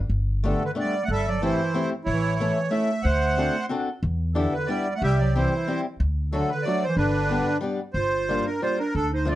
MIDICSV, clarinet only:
0, 0, Header, 1, 2, 480
1, 0, Start_track
1, 0, Key_signature, 1, "major"
1, 0, Tempo, 326797
1, 159, Time_signature, 3, 2, 24, 8
1, 13736, End_track
2, 0, Start_track
2, 0, Title_t, "Clarinet"
2, 0, Program_c, 0, 71
2, 670, Note_on_c, 0, 50, 60
2, 898, Note_off_c, 0, 50, 0
2, 941, Note_on_c, 0, 50, 59
2, 1035, Note_off_c, 0, 50, 0
2, 1170, Note_on_c, 0, 55, 64
2, 1494, Note_off_c, 0, 55, 0
2, 1528, Note_on_c, 0, 57, 64
2, 1620, Note_off_c, 0, 57, 0
2, 1625, Note_on_c, 0, 55, 71
2, 1857, Note_off_c, 0, 55, 0
2, 1887, Note_on_c, 0, 54, 73
2, 2065, Note_off_c, 0, 54, 0
2, 2074, Note_on_c, 0, 52, 68
2, 2764, Note_off_c, 0, 52, 0
2, 3062, Note_on_c, 0, 52, 72
2, 3498, Note_off_c, 0, 52, 0
2, 3524, Note_on_c, 0, 52, 61
2, 3963, Note_off_c, 0, 52, 0
2, 3971, Note_on_c, 0, 57, 62
2, 4429, Note_off_c, 0, 57, 0
2, 4466, Note_on_c, 0, 57, 62
2, 5375, Note_off_c, 0, 57, 0
2, 6423, Note_on_c, 0, 50, 52
2, 6652, Note_off_c, 0, 50, 0
2, 6674, Note_on_c, 0, 50, 61
2, 6879, Note_off_c, 0, 50, 0
2, 6901, Note_on_c, 0, 55, 69
2, 7238, Note_off_c, 0, 55, 0
2, 7293, Note_on_c, 0, 57, 65
2, 7381, Note_off_c, 0, 57, 0
2, 7401, Note_on_c, 0, 55, 68
2, 7622, Note_off_c, 0, 55, 0
2, 7651, Note_on_c, 0, 54, 81
2, 7847, Note_off_c, 0, 54, 0
2, 7880, Note_on_c, 0, 52, 55
2, 8540, Note_off_c, 0, 52, 0
2, 9359, Note_on_c, 0, 50, 61
2, 9554, Note_off_c, 0, 50, 0
2, 9598, Note_on_c, 0, 50, 69
2, 9772, Note_off_c, 0, 50, 0
2, 9806, Note_on_c, 0, 54, 72
2, 10073, Note_off_c, 0, 54, 0
2, 10102, Note_on_c, 0, 52, 76
2, 10232, Note_off_c, 0, 52, 0
2, 10255, Note_on_c, 0, 50, 65
2, 11138, Note_off_c, 0, 50, 0
2, 11700, Note_on_c, 0, 65, 63
2, 12371, Note_off_c, 0, 65, 0
2, 12428, Note_on_c, 0, 62, 55
2, 12628, Note_off_c, 0, 62, 0
2, 12668, Note_on_c, 0, 65, 71
2, 12889, Note_off_c, 0, 65, 0
2, 12917, Note_on_c, 0, 62, 66
2, 13114, Note_off_c, 0, 62, 0
2, 13151, Note_on_c, 0, 62, 64
2, 13371, Note_off_c, 0, 62, 0
2, 13405, Note_on_c, 0, 63, 72
2, 13598, Note_off_c, 0, 63, 0
2, 13625, Note_on_c, 0, 65, 64
2, 13736, Note_off_c, 0, 65, 0
2, 13736, End_track
0, 0, End_of_file